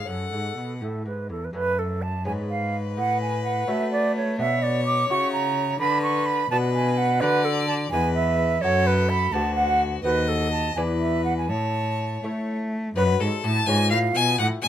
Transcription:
0.04 lute A3 C#4 A4, flute A4, violin F#5
0.08 lute F#2, cello F#2
0.32 cello G#2, lute G#2
0.57 cello B2, lute B2
0.81 cello A2, lute A2, flute A4
1.05 lute G#2, cello G#2, flute B4
1.29 lute E2, cello E2, flute A4
1.45 flute B4
1.53 lute F#2 A3 C#4 A4, cello F#2, flute B4
1.79 flute A4
2.02 flute A5
2.25 lute G#2 B3 C#4 G#4, cello G#2, violin B4, flute G#5
2.50 flute F5
2.97 lute A2, cello A2, flute F#5
3.22 flute G#5
3.44 flute F#5
3.67 lute A3 C#4 F#4, cello A3, flute E5
3.92 flute D5
4.16 flute C#5
4.38 lute B2 D4 F#4, cello B2, violin C#5, flute E5
4.63 flute D5
4.86 flute D6
5.10 lute C#3 E4 F#4, cello C#3, flute C#6
5.32 flute A#5
5.80 lute D3, cello D3, violin B4, flute B5
6.03 flute C#6
6.26 flute B5
6.51 cello B2, lute B2 D4 F#4, violin B4, flute A5
6.74 flute G#5
6.98 flute F#5
7.21 lute D3 D4 F#4, cello D3, flute B4, violin D5
7.45 flute A4
7.68 flute A5
7.91 lute E2 G#3 B3 B4, cello E2, violin B4, flute G#5
8.15 flute E5
8.62 lute F#2 A3 F#4 A4, cello F#2, violin A4, flute C#5
8.87 flute B4
9.09 flute B5
9.33 cello D2, lute D2 B3 F#4 A4, violin F#4, flute A5
9.55 flute F#5
10.03 cello D#2, lute D#2 C4 F#4 A4, flute B4, violin D#5
10.29 flute A4
10.51 flute A5
10.75 cello E2, lute E2 B3 E4 D5, violin B4, flute G#5
11.01 flute E5
11.25 flute F#5
11.38 flute G#5
11.49 cello A2, lute A2, violin C#5, flute A5
12.23 cello A3, lute A3 E4 C#5
12.95 cello F#2, lute F#2 A3 F#4 C#5, violin B4, flute B4
13.20 lute G#2, cello G#2, flute A4, violin A4
13.44 lute A2, cello A2, violin A5, flute A5
13.67 lute G#2 B3 F4 C#5, cello G#2, violin G#5, flute G#5
13.90 lute A2, cello A2, violin F5, flute F5
14.15 lute B2, cello B2, violin G#5, flute G#5
14.38 lute A2, cello A2, violin F#5, flute F#5
14.62 lute B2, cello B2, violin G#5, flute G#5

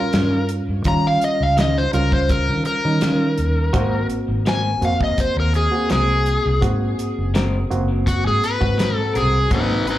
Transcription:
Already playing: reed electric piano G3 C#4 F4, electric slide guitar A#4
0.13 fingered electric bass G2, clean electric guitar D#3 G3 C#4 F4, snare, closed hi-hat
0.49 closed hi-hat
0.69 fingered electric bass G2
0.84 fingered electric bass D#3, reed electric piano G3 C#4 F4, electric slide guitar A#5, kick, closed hi-hat
1.07 electric slide guitar F5
1.21 electric slide guitar D#5, closed hi-hat
1.40 fingered electric bass C#2, electric slide guitar F5
1.57 clean electric guitar D#3 G3 C#4 F4, electric slide guitar D#5, snare, closed hi-hat
1.78 electric slide guitar C5
1.93 fingered electric bass C#2, reed electric piano G3 C#4 F4, electric slide guitar A#4, closed hi-hat
2.12 electric slide guitar C5, kick
2.29 electric slide guitar A#4, kick, closed hi-hat
2.49 fingered electric bass D#3
2.65 electric slide guitar A#4, closed hi-hat
2.85 fingered electric bass D#3, reed electric piano G3 C#4 D#4
3.01 clean electric guitar D#3 G3 C#4 F4, snare, closed hi-hat
3.38 fingered electric bass D#2, closed hi-hat
3.73 fingered electric bass G#1, clean electric guitar G#3 C4 F#4 A#4, reed electric piano A#3 C4 F#4, kick, closed hi-hat
4.10 closed hi-hat
4.28 fingered electric bass G#1
4.46 clean electric guitar G#3 C4 F#4 A#4, electric slide guitar G#5, snare, closed hi-hat
4.81 fingered electric bass F2, reed electric piano A#3 C4 F#4, electric slide guitar F5, closed hi-hat
5.01 electric slide guitar D#5, kick
5.18 electric slide guitar C5, kick, closed hi-hat
5.36 fingered electric bass D#2, electric slide guitar A#4
5.54 electric slide guitar G#4, closed hi-hat
5.71 reed electric piano A#3 C4 F#4
5.89 fingered electric bass C2, clean electric guitar G#3 C4 F#4 A#4, electric slide guitar G#4, snare, closed hi-hat
6.26 closed hi-hat
6.46 fingered electric bass C2
6.61 fingered electric bass G#2, reed electric piano A#3 C4 F#4, kick, closed hi-hat
6.99 closed hi-hat
7.18 fingered electric bass F#1
7.34 clean electric guitar G#3 C4 F#4 A#4, snare, closed hi-hat
7.70 fingered electric bass F#1, reed electric piano A#3 C4 F#4, closed hi-hat
8.07 electric slide guitar F#4, kick, closed hi-hat
8.25 fingered electric bass G#2, electric slide guitar G#4
8.44 electric slide guitar B4, closed hi-hat
8.61 fingered electric bass G#2, reed electric piano A#2 C4 F#4, kick
8.78 clean electric guitar G#3 C4 F#4 A#4, snare, closed hi-hat
8.96 electric slide guitar A4
9.13 fingered electric bass C2, clean electric guitar C4 F#4 A#4, electric slide guitar G#4, closed hi-hat
9.51 fingered electric bass G#1, clean electric guitar G#2 F#3 A#3 C4, reed electric piano A#2 C4 F#4, electric slide guitar D#4 B4, kick, closed hi-hat
9.87 electric slide guitar D#4 B4, closed hi-hat

